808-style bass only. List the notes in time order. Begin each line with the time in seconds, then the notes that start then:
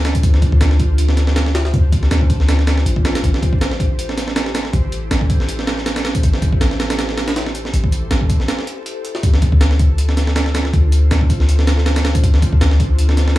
Already playing: D2
0.23 D2
0.61 D2
1.74 D2
2.11 D2
2.86 A1
3.24 A1
4.74 A1
5.11 A1
6.24 A1
6.61 A1
7.74 A1
8.11 A1
9.23 D2
10.74 D2
11.11 D2
12.24 D2
12.61 D2